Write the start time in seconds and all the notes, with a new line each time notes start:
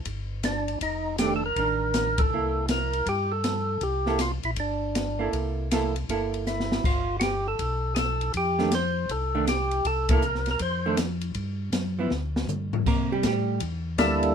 0.05 G1, kick, ride
0.43 D4, snare, hi-hat pedal, ride
0.68 ride
0.81 F1 D#4, kick, ride
1.18 D#3 A3 D4 G4, snare, hi-hat pedal, ride
1.36 A4
1.46 A#4
1.56 A1 D#3 D4, kick, ride
1.94 snare, hi-hat pedal, ride
2.18 A4, kick, ride
2.31 C2 A#3 E4
2.68 A#4, snare, hi-hat pedal, ride
2.93 ride
3.06 G2 G4, kick, ride
3.32 A4
3.44 snare, hi-hat pedal, ride
3.81 C2 G4, kick, ride
4.06 A#3 E4 A4, snare
4.19 F4, snare, hi-hat pedal, ride
4.43 A#1 E4, ride
4.56 G1 D4, kick, ride
4.95 snare, hi-hat pedal, ride
5.19 A#3 E4 A4
5.33 C2, kick, ride
5.71 A#3 E4 A4, snare, hi-hat pedal, ride
5.96 ride
6.09 G1 A#3 E4 A4, kick, ride
6.34 ride
6.46 E4, snare, hi-hat pedal
6.60 snare
6.72 snare
6.84 G1 F4, kick, crash
7.20 F#4 G4, snare, hi-hat pedal, ride
7.48 A4
7.59 B1, kick, ride
7.95 G#4 A4, snare, hi-hat pedal, ride
8.21 ride
8.34 F2 G4, kick, ride
8.59 D#3 A3 D4, snare
8.71 C5, snare, hi-hat pedal, ride
9.09 C2 A4, kick, ride
9.35 D#3 A3 D4
9.47 G4, snare, hi-hat pedal, ride
9.71 ride
9.85 C2 A4, kick, ride
10.09 A#3 E4 A4, kick, ride
10.13 A#4
10.22 hi-hat pedal
10.35 snare
10.46 snare, ride
10.51 A#4
10.59 F2 C5, kick, ride
10.86 D#3 A3 D4
10.97 snare, hi-hat pedal, ride
11.21 ride
11.34 G2, kick, ride
11.72 F#2, snare, hi-hat pedal, ride
11.99 F3 B3 E4
12.11 D2, snare
12.36 snare
12.47 G2, hi-hat pedal, mid tom
12.73 floor tom
12.86 C3 A#3 A#4, kick, crash
13.12 G3 G4
13.23 A2 G3 G4, kick, snare, hi-hat pedal, ride
13.60 E2, kick, ride
13.98 D2 G3 A#3 D4 E4 A4, kick, snare, hi-hat pedal, ride
14.23 ride